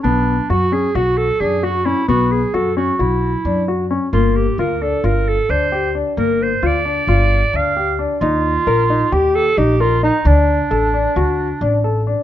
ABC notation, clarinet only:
X:1
M:9/8
L:1/8
Q:3/8=88
K:Bdor
V:1 name="Clarinet"
D2 F G F A G F E | F G A F E3 z2 | =F =G _B A B A =c2 z | _B =c d4 =f2 z |
=F4 =G A G F _E | D6- D z2 |]